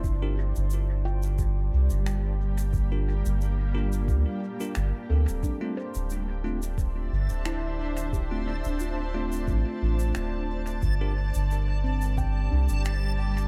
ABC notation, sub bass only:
X:1
M:4/4
L:1/16
Q:"Swing 16ths" 1/4=89
K:Gdor
V:1 name="Sub bass" clef=bass
G,,,3 G,,,6- G,,, C,, G,,,4- G,,,- | G,,,3 G,,,4- G,,, D,, z3 G,,, z D,, D,,, | z3 D,,,6- D,,, G,,, D,,,4- D,,,- | D,,,3 D,,,4- D,,, A,,, z A,,,2 D,,,4 |
G,,,3 G,,,6- G,,, C,, G,,,4- G,,, |]